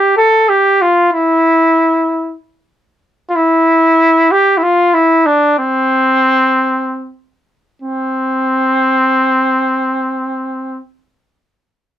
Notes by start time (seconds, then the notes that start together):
Already playing: G4
0.18 A4
0.49 G4
0.82 F4
1.13 E4
3.29 F4
3.36 E4
4.32 G4
4.58 E4
4.63 F4
4.94 E4
5.26 D4
5.58 C4
7.82 C4